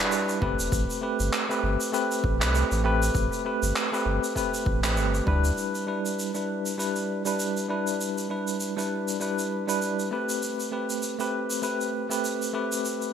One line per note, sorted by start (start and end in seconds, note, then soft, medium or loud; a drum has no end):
0.00 0.38 G3 medium
0.00 0.39 D4 medium
0.00 0.39 E4 medium
0.00 0.39 B4 medium
0.12 shaker medium
0.29 shaker medium
0.41 0.55 G1 medium
0.41 0.99 A3 medium
0.41 0.99 C4 medium
0.41 1.00 G4 medium
0.41 1.00 B4 medium
0.41 kick loud
0.59 0.69 E1 medium
0.59 shaker medium
0.72 0.86 A1 loud
0.72 kick loud
0.72 shaker medium
0.90 shaker soft
1.01 1.46 A3 medium
1.01 1.46 C4 medium
1.01 1.46 G4 medium
1.01 1.46 B4 medium
1.20 1.30 G1 medium
1.20 shaker medium
1.33 clap medium
1.33 shaker medium
1.49 1.90 A3 medium
1.49 1.90 C4 medium
1.49 1.91 G4 medium
1.49 1.91 B4 medium
1.49 shaker soft
1.63 1.77 G1 medium
1.80 shaker medium
1.92 2.36 A3 medium
1.92 2.37 C4 medium
1.92 2.37 G4 medium
1.92 2.37 B4 medium
1.92 shaker medium
2.11 shaker soft
2.24 2.43 A1 loud
2.24 kick loud
2.40 2.64 C2 loud
2.40 2.81 A3 medium
2.40 2.81 C4 medium
2.40 2.82 G4 medium
2.40 2.82 B4 medium
2.40 clap medium
2.40 shaker medium
2.55 shaker medium
2.71 3.10 A1 medium
2.71 shaker soft
2.84 3.42 A3 medium
2.84 3.42 C4 medium
2.84 3.42 G4 medium
2.84 3.43 B4 loud
3.02 shaker medium
3.15 3.28 A1 medium
3.15 kick loud
3.15 shaker medium
3.32 shaker soft
3.45 3.88 A3 medium
3.45 3.89 C4 medium
3.45 3.89 G4 medium
3.45 3.89 B4 medium
3.63 3.73 G1 medium
3.63 shaker medium
3.76 clap medium
3.76 shaker medium
3.92 4.33 A3 medium
3.92 4.33 C4 medium
3.92 4.33 G4 medium
3.92 4.33 B4 medium
3.92 shaker soft
4.06 4.19 G1 medium
4.24 shaker medium
4.35 4.79 A3 medium
4.35 4.79 C4 medium
4.35 4.80 G4 medium
4.35 4.80 B4 medium
4.35 kick medium
4.35 shaker medium
4.54 shaker medium
4.66 4.99 A1 loud
4.66 kick loud
4.83 5.24 A3 medium
4.83 5.24 C4 medium
4.83 5.24 G4 medium
4.83 5.25 B4 medium
4.83 clap medium
4.83 shaker medium
4.97 5.21 G1 medium
4.97 shaker medium
5.14 shaker soft
5.26 5.51 D2 loud
5.26 5.84 G3 medium
5.26 5.84 D4 medium
5.26 5.85 E4 medium
5.26 5.85 B4 loud
5.26 kick loud
5.44 shaker medium
5.58 shaker medium
5.75 shaker soft
5.86 6.30 G3 medium
5.86 6.31 D4 medium
5.86 6.31 E4 medium
5.86 6.31 B4 medium
6.06 shaker medium
6.19 shaker soft
6.34 6.75 G3 medium
6.34 6.75 D4 medium
6.34 6.76 E4 medium
6.34 6.76 B4 medium
6.34 shaker soft
6.66 shaker medium
6.78 7.22 G3 medium
6.78 7.22 D4 medium
6.78 7.22 E4 medium
6.78 7.22 B4 medium
6.78 shaker medium
6.96 shaker soft
7.25 7.66 G3 medium
7.25 7.66 D4 medium
7.25 7.66 E4 medium
7.25 7.67 B4 medium
7.25 shaker medium
7.39 shaker medium
7.57 shaker soft
7.69 8.27 G3 medium
7.69 8.27 D4 medium
7.69 8.27 E4 medium
7.69 8.27 B4 medium
7.87 shaker medium
8.01 shaker medium
8.18 shaker soft
8.29 8.73 G3 medium
8.29 8.73 D4 medium
8.29 8.74 E4 medium
8.29 8.74 B4 medium
8.47 shaker medium
8.60 shaker medium
8.77 9.17 G3 medium
8.77 9.18 D4 medium
8.77 9.18 E4 medium
8.77 9.18 B4 medium
8.77 shaker soft
9.08 shaker medium
9.20 9.64 G3 medium
9.20 9.64 D4 medium
9.20 9.65 E4 medium
9.20 9.65 B4 medium
9.20 shaker medium
9.39 shaker soft
9.67 10.08 G3 medium
9.67 10.08 D4 medium
9.67 10.09 E4 medium
9.67 10.09 B4 medium
9.67 shaker medium
9.82 shaker medium
9.99 shaker soft
10.11 10.69 A3 medium
10.11 10.69 C4 medium
10.11 10.70 G4 medium
10.11 10.70 B4 medium
10.29 shaker medium
10.42 shaker medium
10.60 shaker soft
10.71 11.15 A3 medium
10.71 11.16 C4 medium
10.71 11.16 G4 medium
10.71 11.16 B4 medium
10.90 shaker medium
11.02 shaker medium
11.19 11.60 A3 medium
11.19 11.60 C4 medium
11.19 11.60 G4 medium
11.19 11.61 B4 medium
11.19 shaker soft
11.50 shaker medium
11.62 12.06 A3 medium
11.62 12.06 C4 medium
11.62 12.07 G4 medium
11.62 12.07 B4 medium
11.62 shaker medium
11.81 shaker soft
12.10 12.50 A3 medium
12.10 12.51 C4 medium
12.10 12.51 G4 medium
12.10 12.51 B4 medium
12.10 shaker medium
12.24 shaker medium
12.42 shaker medium
12.53 13.11 A3 medium
12.53 13.12 C4 medium
12.53 13.12 G4 medium
12.53 13.12 B4 medium
12.72 shaker medium
12.85 shaker medium
13.02 shaker soft